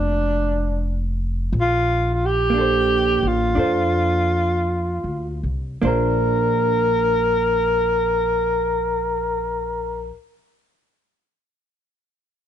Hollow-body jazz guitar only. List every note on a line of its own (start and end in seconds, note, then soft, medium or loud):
0.00 1.53 A#3 soft
2.50 5.80 A#3 soft
2.54 3.54 D4 soft
2.58 3.56 A4 soft
2.58 3.58 C5 soft
3.55 5.81 D4 soft
3.55 5.82 A4 soft
3.59 5.83 C5 soft
5.82 10.13 A#3 medium
5.82 10.14 D4 medium
5.82 10.16 C5 medium